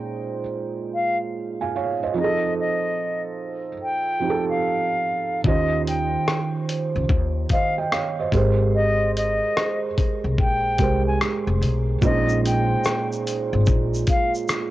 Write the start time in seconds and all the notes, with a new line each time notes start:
Already playing: A#2 G#3 C#4 D#4 C5
0.95 F5
1.61 F5 G#5
1.76 C#5 F5
2.03 C5 D#5
2.14 F3 C4 D#4 G#4
2.18 D#5
2.24 A4
2.60 D#5
3.83 G5
4.20 F3 C4 D#4 G4
4.30 A4
4.50 F5
5.44 D#2 D#3 C#4 F4 G4 D#5, kick
5.48 C5
5.88 G5, closed hi-hat
6.28 cross-stick
6.69 closed hi-hat
6.96 C#2
7.09 D#2, kick
7.49 C5 D#5 F5, kick, closed hi-hat
7.78 D#5 G5
7.92 C#5 F5, cross-stick
8.20 C5 D#5
8.32 G#1 G#3 G4 A#4, kick, closed hi-hat
8.36 C5
8.75 D#5
9.17 D#5, closed hi-hat
9.57 cross-stick
9.98 kick, closed hi-hat
10.24 C2
10.38 A#1 G5, kick
10.78 C2 G#3 G4 A#4, kick, closed hi-hat
10.83 C5
11.07 G#5
11.21 cross-stick
11.47 F1
11.61 B1, closed hi-hat
12.01 A#1 A#2 G#3 C#4 D#4 C5 D#5, kick, shaker
12.29 shaker
12.46 G5, closed hi-hat, shaker
12.84 cross-stick, shaker
13.12 shaker
13.27 closed hi-hat, shaker
13.53 G#1
13.66 A#1, kick, shaker
13.94 shaker
14.07 F5, kick, closed hi-hat, shaker
14.34 shaker
14.48 cross-stick, shaker